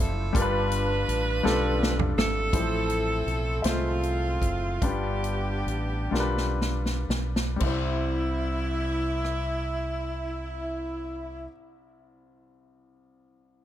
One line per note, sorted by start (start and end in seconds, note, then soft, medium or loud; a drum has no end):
0.00 0.32 F#1 medium
0.00 0.36 A2 medium
0.00 0.37 F3 medium
0.00 0.36 A3 medium
0.00 0.31 E4 medium
0.00 0.37 E4 medium
0.00 0.31 F4 medium
0.00 0.36 A4 medium
0.00 0.36 C5 medium
0.00 0.36 D5 medium
0.00 0.36 E5 medium
0.33 1.04 G1 medium
0.33 1.40 G2 medium
0.33 1.13 G3 medium
0.33 1.13 D4 medium
0.33 1.14 F4 medium
0.33 0.42 A#4 medium
0.33 kick loud
0.33 closed hi-hat medium
0.37 2.01 D4 medium
0.37 2.01 F4 medium
0.37 2.01 B4 medium
0.42 1.17 B4 medium
0.72 closed hi-hat medium
1.08 1.41 A1 medium
1.08 closed hi-hat soft
1.43 2.13 B1 medium
1.43 2.22 G3 medium
1.43 2.23 D4 medium
1.43 2.23 F4 medium
1.43 2.23 A4 medium
1.43 snare medium
1.83 snare medium
1.99 mid tom medium
2.17 2.50 G#1 medium
2.17 3.61 C4 medium
2.17 3.61 E4 medium
2.17 3.60 A4 loud
2.17 snare medium
2.53 3.22 A1 medium
2.53 3.60 A2 medium
2.53 3.33 F3 medium
2.53 2.59 G3 soft
2.53 3.33 E4 medium
2.53 3.34 C5 medium
2.53 kick medium
2.53 closed hi-hat medium
2.59 3.36 A3 medium
2.90 closed hi-hat soft
3.27 3.61 B1 medium
3.27 closed hi-hat soft
3.61 4.37 C2 medium
3.61 3.69 G#3 soft
3.61 4.48 F4 soft
3.61 4.49 C5 medium
3.61 4.47 E5 medium
3.61 closed hi-hat medium
3.66 4.50 A3 soft
3.66 4.78 C4 soft
3.66 4.82 F4 medium
3.66 snare medium
4.03 closed hi-hat soft
4.42 4.78 F#1 medium
4.42 kick medium
4.42 closed hi-hat soft
4.82 5.63 G1 medium
4.82 6.08 G2 soft
4.82 5.74 G3 medium
4.82 6.55 B3 medium
4.82 5.75 D4 medium
4.82 6.55 D4 soft
4.82 5.75 F4 medium
4.82 6.59 G4 medium
4.82 5.75 B4 medium
4.82 kick medium
4.82 closed hi-hat medium
5.24 closed hi-hat soft
5.66 6.08 A1 medium
5.66 closed hi-hat soft
6.11 7.05 B1 medium
6.11 7.17 G3 medium
6.11 7.18 D4 medium
6.11 7.18 F4 medium
6.11 6.21 A#4 medium
6.11 snare soft
6.20 7.22 B4 medium
6.38 snare soft
6.61 snare medium
6.86 snare soft
7.09 7.57 B1 medium
7.09 snare medium
7.36 snare medium
7.56 11.41 G3 medium
7.56 11.45 C4 medium
7.60 11.46 C2 medium
7.60 11.48 E4 medium
7.60 kick medium
7.60 crash medium
7.66 11.52 C5 medium
9.25 cross-stick soft